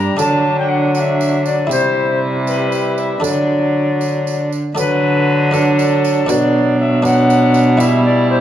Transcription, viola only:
0.00 0.18 D4 medium
0.20 1.68 D4 medium
1.70 3.20 E4 medium
3.24 4.55 D4 medium
4.78 5.50 D4 medium
5.54 6.28 D4 medium
6.30 7.04 D4 medium
7.05 7.81 D4 medium
7.80 8.41 E4 medium

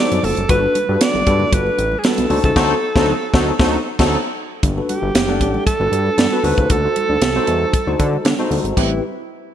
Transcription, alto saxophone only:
0.00 0.26 D5 loud
0.25 0.50 A4 medium
0.50 1.03 B4 loud
1.02 1.55 D5 loud
1.54 2.00 B4 loud
1.99 2.07 G#4 medium
2.06 2.44 A4 medium
2.45 4.08 A4 loud
4.89 5.63 G4 medium
5.66 6.46 A4 loud
6.44 6.72 B4 loud
6.71 8.52 A4 loud
8.78 9.02 E4 medium

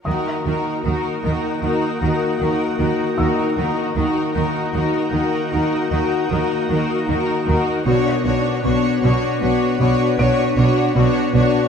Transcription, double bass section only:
0.06 0.14 D#2 soft
0.46 0.54 D#2 soft
0.86 0.94 D#2 soft
1.25 1.33 D#2 soft
1.64 1.72 D#2 soft
2.03 2.11 D#2 soft
2.41 2.49 D#2 soft
2.80 2.88 D#2 soft
3.19 3.27 D#2 soft
3.58 3.66 D#2 soft
3.96 4.04 D#2 soft
4.36 4.44 D#2 soft
4.75 4.83 D#2 soft
5.14 5.22 D#2 soft
5.53 5.61 D#2 soft
5.92 6.00 D#2 soft
6.31 6.39 D#2 soft
6.70 6.78 D#2 soft
7.09 7.17 D#2 soft
7.49 7.57 D#2 soft
7.86 7.94 B1 soft
8.25 8.33 B1 soft
8.65 8.73 B1 medium
9.04 9.12 B1 soft
9.42 9.50 B1 soft
9.81 9.89 B1 medium
10.20 10.28 B1 soft
10.57 10.65 B1 soft
10.96 11.04 B1 soft
11.35 11.43 B1 soft

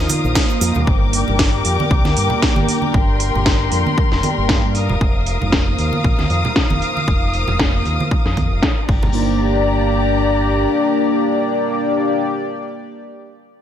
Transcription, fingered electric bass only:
0.24 0.33 A#1 loud
0.61 0.73 F2 medium
0.76 0.85 D#2 medium
0.87 1.23 G1 medium
1.28 1.61 G1 medium
1.65 1.76 F2 medium
1.91 2.02 C2 medium
2.05 2.14 D2 medium
2.17 2.28 G2 medium
2.57 2.66 G1 medium
2.94 3.30 G1 medium
3.35 3.68 G1 medium
3.72 3.83 F2 medium
4.12 4.21 F1 medium
4.38 4.51 G1 medium
4.49 4.61 G2 medium
4.64 4.91 G2 medium
4.90 4.99 F1 medium
5.01 5.37 F1 medium
5.41 5.75 F1 medium
5.79 5.90 D#2 medium
6.04 6.16 A#1 medium
6.19 6.28 D2 medium
6.30 6.42 F2 medium
6.71 6.80 F1 medium
7.08 7.43 F1 medium
7.48 7.82 F1 medium
7.85 7.97 D#2 medium
8.26 8.53 F2 medium
8.51 8.61 F1 medium
8.89 10.66 G1 medium

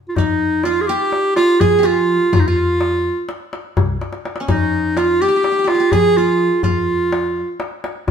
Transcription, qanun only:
0.18 1.63 D#4 medium
0.65 1.36 F4 medium
0.89 1.67 G4 medium
1.37 1.83 F4 medium
1.61 1.85 G#4 medium
1.79 3.04 G4 medium
1.83 2.32 F4 medium
2.33 2.47 F4 medium
2.48 3.82 F4 medium
4.40 5.95 C#4 medium
4.48 5.93 D#4 medium
4.97 6.18 F4 medium
5.22 5.28 G4 medium
5.28 5.36 G4 medium
5.36 5.43 G4 medium
5.43 5.51 G4 soft
5.52 5.58 G4 medium
5.59 5.64 G4 soft
5.64 5.74 G4 medium
5.75 5.79 G4 soft
5.80 5.99 G4 medium
5.93 7.14 G#4 medium
6.18 6.63 F4 medium
6.64 7.98 F4 medium

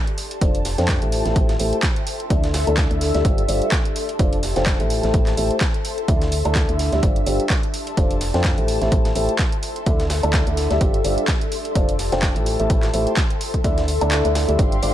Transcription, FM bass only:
0.41 0.76 F1 loud
0.78 0.99 F2 loud
1.02 1.23 A1 loud
1.26 1.34 A1 loud
1.36 1.57 A1 medium
1.60 1.72 A1 loud
2.30 2.65 D2 loud
2.67 2.88 D2 medium
2.91 3.12 D2 loud
3.15 3.23 D2 loud
3.25 3.46 G1 medium
3.48 3.61 G1 loud
4.19 4.54 F1 loud
4.56 4.77 F1 medium
4.80 5.01 A1 medium
5.03 5.12 A1 loud
5.14 5.35 A1 loud
5.37 5.50 A1 loud
6.08 6.43 D2 loud
6.45 6.66 D2 loud
6.69 6.90 D2 loud
6.92 7.01 D2 loud
7.03 7.24 G1 medium
7.26 7.39 G1 medium
7.97 8.32 F1 loud
8.34 8.55 F2 loud
8.58 8.79 A1 loud
8.81 8.90 A1 loud
8.92 9.13 A1 medium
9.15 9.28 A1 medium
9.86 10.21 D2 loud
10.23 10.44 D2 loud
10.47 10.68 D2 loud
10.71 10.79 D2 loud
10.81 11.02 G1 medium
11.05 11.17 G1 loud
11.75 12.10 F1 loud
12.12 12.33 F1 loud
12.36 12.57 A1 loud
12.60 12.68 A1 loud
12.70 12.91 A1 medium
12.94 13.06 A1 loud
13.64 13.99 D2 loud
14.01 14.22 D2 loud
14.25 14.46 D2 medium
14.48 14.57 D2 loud
14.59 14.80 G1 medium
14.83 14.94 G1 medium

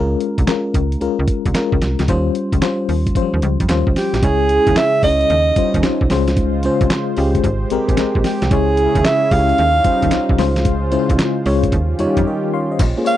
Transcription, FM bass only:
0.00 0.16 C#2 loud
0.38 0.46 C2 medium
0.75 0.96 C#2 medium
1.01 1.08 C#2 soft
1.19 1.26 C#2 medium
1.46 1.53 C2 loud
1.73 1.80 C#2 medium
1.82 1.96 C2 medium
1.99 2.07 C#2 loud
2.08 2.30 D#2 loud
2.53 2.60 C#2 medium
2.89 3.11 D#2 medium
3.33 3.41 D#2 medium
3.43 3.57 C#2 loud
3.60 3.67 F2 medium
3.69 3.83 D#2 loud
3.87 3.94 C#2 medium
4.14 4.21 A#1 loud
4.23 4.59 C#2 loud
4.67 4.74 D#2 loud
5.03 5.25 C#2 loud
5.30 5.52 D#2 loud
5.57 5.64 D#2 soft
5.75 5.82 D#2 loud
5.84 5.91 C2 medium
6.01 6.09 C2 medium
6.11 6.69 C#2 loud
6.81 6.88 C2 medium
7.18 7.39 C#2 medium
7.44 7.66 G#1 loud
7.71 7.78 A#1 soft
7.89 7.96 A#1 medium
8.16 8.23 A#1 medium
8.42 8.50 C2 loud
8.51 8.88 C#2 loud
8.95 9.03 D#2 loud
9.31 9.53 C#2 loud
9.59 9.80 D#2 loud
9.85 9.92 D#2 medium
10.03 10.10 D#2 loud
10.12 10.19 C2 medium
10.30 10.37 C2 medium
10.39 10.97 C#2 loud
11.10 11.17 C2 medium
11.46 11.68 C#2 loud
11.72 11.94 D#2 loud
12.00 12.07 F2 medium
12.17 12.24 F2 loud
12.80 12.94 A#1 loud

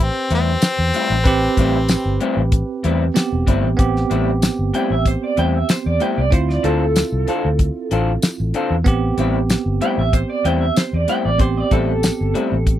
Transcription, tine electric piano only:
0.00 1.21 C4 medium
0.00 1.22 G4 medium
0.00 1.20 B4 medium
1.24 3.12 C4 medium
1.24 3.13 G4 loud
1.24 3.11 B4 medium
3.14 3.76 B3 medium
3.14 3.77 C4 medium
3.14 3.78 G4 medium
3.77 6.27 B3 medium
3.77 6.28 C4 medium
3.77 6.29 G4 medium
6.31 8.81 C4 medium
6.31 8.82 E4 medium
6.31 8.83 F4 medium
8.84 11.35 B3 medium
8.84 11.36 C4 medium
8.84 11.37 G4 medium
11.38 12.79 B3 medium
11.38 12.79 C4 medium
11.38 12.79 G4 medium

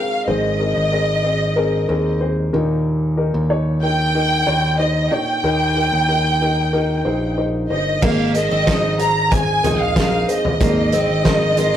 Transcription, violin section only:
0.00 0.27 F5 medium
0.27 2.17 D#5 medium
3.84 4.76 G5 medium
4.80 5.12 D#5 medium
5.12 7.38 G5 medium
7.72 8.01 D#5 medium
8.03 8.35 F5 medium
8.36 8.96 D#5 medium
9.01 9.32 A#5 medium
9.32 9.80 G#5 medium
9.80 10.28 F5 medium
10.29 11.77 D#5 medium

